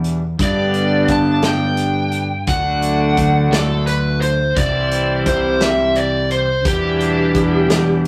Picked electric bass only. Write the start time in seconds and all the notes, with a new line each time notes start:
Already playing: E2
0.39 G2
1.08 G2
2.47 D2
3.17 D2
3.51 D2
4.56 C2
5.26 C2
6.66 E2
7.35 E2
7.68 E2